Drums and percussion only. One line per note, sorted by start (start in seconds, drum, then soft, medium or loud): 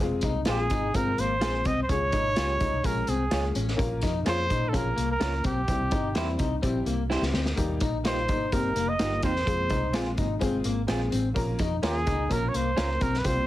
0.21 kick medium
0.21 closed hi-hat medium
0.45 snare loud
0.45 closed hi-hat medium
0.70 kick medium
0.70 closed hi-hat medium
0.94 kick medium
0.94 closed hi-hat medium
1.18 closed hi-hat medium
1.42 snare loud
1.42 closed hi-hat medium
1.65 kick medium
1.65 closed hi-hat medium
1.89 kick loud
1.89 closed hi-hat medium
2.12 kick medium
2.12 closed hi-hat medium
2.36 snare medium
2.36 closed hi-hat medium
2.60 kick medium
2.60 closed hi-hat medium
2.84 kick medium
2.84 closed hi-hat medium
3.07 closed hi-hat medium
3.31 snare medium
3.31 closed hi-hat medium
3.55 closed hi-hat medium
3.68 snare soft
3.79 kick loud
3.79 closed hi-hat medium
4.02 kick medium
4.02 snare soft
4.02 closed hi-hat medium
4.26 snare loud
4.26 closed hi-hat medium
4.50 kick medium
4.50 closed hi-hat medium
4.74 kick loud
4.74 closed hi-hat medium
4.98 closed hi-hat medium
5.21 snare loud
5.21 closed hi-hat medium
5.44 kick medium
5.44 closed hi-hat medium
5.68 kick medium
5.68 closed hi-hat medium
5.91 kick medium
5.91 closed hi-hat medium
6.15 snare loud
6.15 closed hi-hat medium
6.39 kick medium
6.39 closed hi-hat medium
6.63 kick medium
6.63 closed hi-hat medium
6.86 closed hi-hat medium
7.11 snare medium
7.23 snare medium
7.34 snare medium
7.46 snare medium
7.56 kick medium
7.56 closed hi-hat medium
7.56 muted conga soft
7.67 high conga medium
7.80 kick medium
7.80 closed hi-hat medium
8.05 snare medium
8.05 closed hi-hat medium
8.28 kick loud
8.28 closed hi-hat medium
8.28 muted conga soft
8.28 high conga medium
8.28 low conga medium
8.52 kick medium
8.52 closed hi-hat medium
8.52 muted conga soft
8.52 high conga medium
8.76 closed hi-hat medium
8.99 snare loud
8.99 closed hi-hat medium
9.11 high conga medium
9.23 kick medium
9.23 closed hi-hat medium
9.23 low conga medium
9.36 snare soft
9.46 kick loud
9.46 closed hi-hat medium
9.46 muted conga soft
9.58 high conga medium
9.70 kick medium
9.70 closed hi-hat medium
9.70 muted conga soft
9.94 snare loud
9.94 closed hi-hat medium
10.17 kick medium
10.17 closed hi-hat medium
10.17 muted conga soft
10.17 high conga medium
10.17 low conga medium
10.41 kick medium
10.41 closed hi-hat medium
10.41 high conga medium
10.64 closed hi-hat medium
10.88 snare loud
10.88 closed hi-hat medium
11.00 high conga medium
11.12 closed hi-hat medium
11.12 low conga medium
11.36 kick loud
11.36 closed hi-hat medium
11.47 high conga medium
11.59 kick loud
11.59 closed hi-hat medium
11.59 muted conga soft
11.82 snare loud
11.82 closed hi-hat medium
11.82 muted conga soft
12.06 kick loud
12.06 closed hi-hat medium
12.06 high conga medium
12.06 low conga medium
12.29 kick medium
12.29 closed hi-hat medium
12.29 high conga medium
12.54 closed hi-hat medium
12.77 snare loud
12.77 closed hi-hat medium
12.88 high conga medium
13.00 kick medium
13.00 closed hi-hat medium
13.00 low conga medium
13.14 snare soft
13.25 kick medium
13.25 closed hi-hat medium
13.35 high conga medium